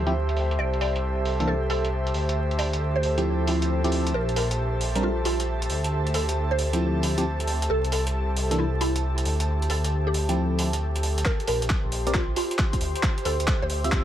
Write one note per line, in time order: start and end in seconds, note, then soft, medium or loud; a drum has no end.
0.00 0.57 D2 medium
0.00 7.68 G4 medium
0.00 11.26 A4 medium
0.00 12.81 C5 medium
0.00 12.81 E5 medium
0.00 11.26 A5 medium
0.07 0.13 F3 medium
0.07 0.13 C4 medium
0.07 0.13 E4 medium
0.07 0.13 G4 medium
0.07 closed hi-hat medium
0.29 closed hi-hat soft
0.37 open hi-hat medium
0.51 closed hi-hat medium
0.59 2.13 C2 medium
0.59 0.73 D5 medium
0.74 closed hi-hat soft
0.81 0.99 D5 medium
0.81 open hi-hat medium
0.96 closed hi-hat medium
1.25 open hi-hat medium
1.40 1.53 E3 medium
1.40 1.53 A#3 medium
1.40 1.53 D4 medium
1.40 1.53 A4 medium
1.40 closed hi-hat medium
1.48 1.62 A4 medium
1.70 1.88 A4 medium
1.70 open hi-hat medium
1.85 closed hi-hat medium
2.07 closed hi-hat soft
2.14 4.13 D2 medium
2.14 open hi-hat medium
2.29 closed hi-hat medium
2.51 closed hi-hat soft
2.59 2.77 D5 medium
2.59 open hi-hat loud
2.73 closed hi-hat medium
2.96 3.10 C5 medium
3.03 open hi-hat medium
3.18 3.46 F3 medium
3.18 3.46 C4 medium
3.18 3.46 E4 medium
3.18 3.46 G4 medium
3.18 closed hi-hat medium
3.47 3.81 F3 medium
3.47 3.81 C4 medium
3.47 3.81 E4 medium
3.47 3.81 G4 medium
3.47 open hi-hat medium
3.62 closed hi-hat medium
3.84 4.13 F3 medium
3.84 4.13 C4 medium
3.84 4.13 E4 medium
3.84 4.13 G4 loud
3.84 closed hi-hat soft
3.92 open hi-hat medium
4.07 closed hi-hat medium
4.14 5.68 A#1 medium
4.14 4.29 A#4 medium
4.29 closed hi-hat soft
4.36 4.55 A#4 medium
4.36 open hi-hat loud
4.51 closed hi-hat medium
4.81 open hi-hat medium
4.95 5.09 G3 medium
4.95 5.09 C4 medium
4.95 5.09 D4 medium
4.95 5.09 A#4 medium
4.95 closed hi-hat medium
5.03 5.18 F4 medium
5.25 5.44 F4 medium
5.25 open hi-hat loud
5.40 closed hi-hat medium
5.62 closed hi-hat soft
5.70 7.68 D2 medium
5.70 open hi-hat medium
5.84 closed hi-hat medium
6.07 closed hi-hat soft
6.14 6.32 A4 medium
6.14 open hi-hat loud
6.29 closed hi-hat medium
6.51 6.66 C5 medium
6.59 open hi-hat medium
6.73 7.14 F3 medium
6.73 7.14 C4 medium
6.73 7.14 E4 medium
6.73 7.14 G4 medium
6.73 closed hi-hat medium
7.03 open hi-hat loud
7.18 7.24 F3 medium
7.18 7.24 C4 medium
7.18 7.24 E4 medium
7.18 7.24 G4 medium
7.18 closed hi-hat medium
7.40 closed hi-hat medium
7.47 open hi-hat medium
7.62 closed hi-hat medium
7.70 9.24 C2 medium
7.70 14.04 G4 medium
7.70 7.84 A4 loud
7.84 closed hi-hat soft
7.92 8.10 A4 medium
7.92 open hi-hat loud
8.07 closed hi-hat medium
8.36 open hi-hat medium
8.51 8.64 E3 medium
8.51 8.64 A#3 medium
8.51 8.64 D4 medium
8.51 8.64 A4 medium
8.51 closed hi-hat medium
8.59 8.73 E4 medium
8.81 8.99 E4 loud
8.81 open hi-hat loud
8.96 closed hi-hat medium
9.18 closed hi-hat medium
9.25 11.24 D2 medium
9.25 open hi-hat medium
9.40 closed hi-hat medium
9.62 closed hi-hat soft
9.70 9.88 A4 medium
9.70 open hi-hat loud
9.84 closed hi-hat medium
10.07 10.21 G4 medium
10.14 open hi-hat medium
10.29 10.70 F3 medium
10.29 10.70 C4 medium
10.29 10.70 E4 medium
10.29 10.70 G4 medium
10.29 closed hi-hat medium
10.59 open hi-hat loud
10.73 closed hi-hat medium
10.96 closed hi-hat medium
11.03 open hi-hat medium
11.18 closed hi-hat medium
11.25 11.40 A#4 loud
11.25 14.04 C5 medium
11.25 14.04 C6 medium
11.25 kick loud
11.25 clap soft
11.40 closed hi-hat soft
11.47 11.60 A#1 loud
11.47 11.66 A#4 medium
11.47 open hi-hat loud
11.62 11.69 A#1 medium
11.62 closed hi-hat medium
11.70 kick loud
11.70 clap soft
11.84 12.35 A#1 medium
11.92 open hi-hat medium
12.07 12.20 C4 medium
12.07 12.20 G4 medium
12.07 12.20 A#4 medium
12.07 12.20 D5 medium
12.07 closed hi-hat medium
12.14 12.29 F4 medium
12.14 kick loud
12.14 clap soft
12.36 12.55 F4 medium
12.36 open hi-hat loud
12.51 closed hi-hat medium
12.59 kick loud
12.59 clap soft
12.73 kick medium
12.73 closed hi-hat soft
12.81 12.93 D2 medium
12.81 open hi-hat medium
12.96 closed hi-hat medium
13.03 kick loud
13.03 clap medium
13.16 14.04 E5 medium
13.16 closed hi-hat soft
13.25 13.38 D2 loud
13.25 13.44 A4 loud
13.25 open hi-hat loud
13.39 13.46 D2 medium
13.39 14.04 C5 medium
13.39 closed hi-hat medium
13.47 kick loud
13.47 clap medium
13.62 13.90 D2 medium
13.62 13.77 C5 medium
13.70 open hi-hat medium
13.84 14.04 C4 medium
13.84 14.04 F4 medium
13.84 14.04 G4 medium
13.84 14.04 E5 medium
13.84 closed hi-hat medium
13.92 14.04 D2 medium
13.92 kick loud
13.92 clap medium